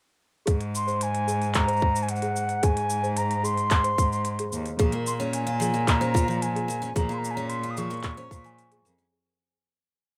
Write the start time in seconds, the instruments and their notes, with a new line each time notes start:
0.46 cello G#2, celesta G#4, kick, closed hi-hat, shaker
0.61 closed hi-hat, shaker
0.75 flute C6, shaker
0.87 celesta C5, shaker
1.01 flute G#5, closed hi-hat, shaker
1.15 closed hi-hat, shaker
1.27 celesta G#4, shaker
1.42 closed hi-hat, shaker
1.55 flute A#5, kick, clap, closed hi-hat, shaker
1.67 celesta C5, closed hi-hat, shaker
1.73 shaker
1.77 shaker
1.79 kick, shaker
1.96 shaker
2.02 flute G#5, shaker
2.09 flute F#5, closed hi-hat, shaker
2.16 shaker
2.22 celesta G#4, closed hi-hat, shaker
2.36 shaker
2.49 closed hi-hat, shaker
2.63 cello G#2, celesta G#4, flute G#5, kick, closed hi-hat, shaker
2.77 closed hi-hat, shaker
2.90 shaker
3.03 celesta C5, shaker
3.17 flute A#5, closed hi-hat, shaker
3.31 closed hi-hat, shaker
3.43 celesta G#4, flute C6, shaker
3.57 closed hi-hat, shaker
3.71 kick, clap, closed hi-hat, shaker
3.84 celesta C5, closed hi-hat, shaker
3.98 cello G#2, kick, shaker
4.12 shaker
4.25 closed hi-hat, shaker
4.39 celesta G#4, closed hi-hat, shaker
4.52 cello D#2, shaker
4.66 closed hi-hat, shaker
4.79 cello A#2, steel-string acoustic guitar F3, celesta G#4, kick, closed hi-hat, shaker
4.92 steel-string acoustic guitar A#3, closed hi-hat
5.07 flute C6, shaker
5.20 steel-string acoustic guitar C#4, celesta C#5, shaker
5.33 flute G#5, closed hi-hat, shaker
5.47 steel-string acoustic guitar F4, closed hi-hat, shaker
5.60 steel-string acoustic guitar F3, celesta G#4, shaker
5.74 steel-string acoustic guitar A#3, closed hi-hat, shaker
5.88 flute A#5, kick, clap, closed hi-hat, shaker
6.01 steel-string acoustic guitar C#4, celesta C5, closed hi-hat, shaker
6.14 steel-string acoustic guitar F4, kick, shaker
6.28 steel-string acoustic guitar F3, shaker
6.42 flute G#5, closed hi-hat, shaker
6.56 celesta G#4, closed hi-hat, shaker
6.68 steel-string acoustic guitar A#3, shaker
6.82 steel-string acoustic guitar C#4, closed hi-hat, shaker
6.96 cello A#2, steel-string acoustic guitar F3, celesta G#4, flute A#5, kick, closed hi-hat, shaker
7.09 steel-string acoustic guitar A#3, shaker
7.14 flute C6
7.18 flute A#5
7.25 shaker
7.31 flute G#5
7.35 steel-string acoustic guitar C#4, celesta C#5, flute A#5, shaker
7.49 flute C6, closed hi-hat, shaker
7.63 steel-string acoustic guitar F4, closed hi-hat, shaker
7.70 flute D#6
7.77 steel-string acoustic guitar F3, celesta G#4, flute C#6, shaker
7.90 steel-string acoustic guitar A#3, closed hi-hat, shaker
7.94 closed hi-hat
7.97 closed hi-hat
8.00 clap, closed hi-hat
8.03 kick, closed hi-hat, shaker
8.11 closed hi-hat
8.14 steel-string acoustic guitar C#4, celesta C5, closed hi-hat
8.18 closed hi-hat, shaker
8.31 cello A#2, steel-string acoustic guitar F4, kick, shaker
8.44 steel-string acoustic guitar F3, celesta G#5, shaker
8.59 closed hi-hat, shaker
8.72 celesta G#4, closed hi-hat, shaker
8.85 cello F2, steel-string acoustic guitar A#3, shaker
8.98 steel-string acoustic guitar C#4, closed hi-hat, shaker